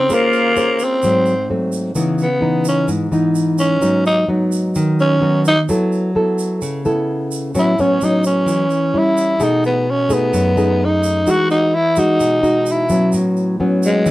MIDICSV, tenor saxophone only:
0, 0, Header, 1, 2, 480
1, 0, Start_track
1, 0, Key_signature, 4, "minor"
1, 0, Tempo, 465477
1, 96, Time_signature, 4, 2, 24, 8
1, 14549, End_track
2, 0, Start_track
2, 0, Title_t, "Tenor saxophone"
2, 0, Program_c, 0, 66
2, 0, Note_on_c, 0, 60, 102
2, 146, Note_on_c, 0, 58, 104
2, 162, Note_off_c, 0, 60, 0
2, 867, Note_on_c, 0, 60, 95
2, 883, Note_off_c, 0, 58, 0
2, 1563, Note_off_c, 0, 60, 0
2, 2293, Note_on_c, 0, 59, 78
2, 2724, Note_off_c, 0, 59, 0
2, 2770, Note_on_c, 0, 61, 79
2, 2979, Note_off_c, 0, 61, 0
2, 3708, Note_on_c, 0, 61, 81
2, 4150, Note_off_c, 0, 61, 0
2, 4193, Note_on_c, 0, 63, 93
2, 4410, Note_off_c, 0, 63, 0
2, 5161, Note_on_c, 0, 61, 95
2, 5598, Note_off_c, 0, 61, 0
2, 5649, Note_on_c, 0, 63, 95
2, 5784, Note_off_c, 0, 63, 0
2, 7826, Note_on_c, 0, 64, 81
2, 8050, Note_on_c, 0, 61, 84
2, 8066, Note_off_c, 0, 64, 0
2, 8293, Note_on_c, 0, 63, 90
2, 8308, Note_off_c, 0, 61, 0
2, 8517, Note_off_c, 0, 63, 0
2, 8522, Note_on_c, 0, 61, 86
2, 9262, Note_on_c, 0, 64, 83
2, 9277, Note_off_c, 0, 61, 0
2, 9729, Note_on_c, 0, 63, 85
2, 9745, Note_off_c, 0, 64, 0
2, 9955, Note_off_c, 0, 63, 0
2, 9960, Note_on_c, 0, 59, 83
2, 10215, Note_on_c, 0, 61, 81
2, 10231, Note_off_c, 0, 59, 0
2, 10448, Note_on_c, 0, 59, 87
2, 10463, Note_off_c, 0, 61, 0
2, 11187, Note_on_c, 0, 63, 82
2, 11202, Note_off_c, 0, 59, 0
2, 11654, Note_on_c, 0, 66, 98
2, 11670, Note_off_c, 0, 63, 0
2, 11862, Note_off_c, 0, 66, 0
2, 11868, Note_on_c, 0, 63, 88
2, 12111, Note_on_c, 0, 64, 94
2, 12127, Note_off_c, 0, 63, 0
2, 12367, Note_on_c, 0, 63, 84
2, 12382, Note_off_c, 0, 64, 0
2, 13109, Note_on_c, 0, 64, 78
2, 13125, Note_off_c, 0, 63, 0
2, 13564, Note_off_c, 0, 64, 0
2, 14293, Note_on_c, 0, 56, 87
2, 14549, Note_off_c, 0, 56, 0
2, 14549, End_track
0, 0, End_of_file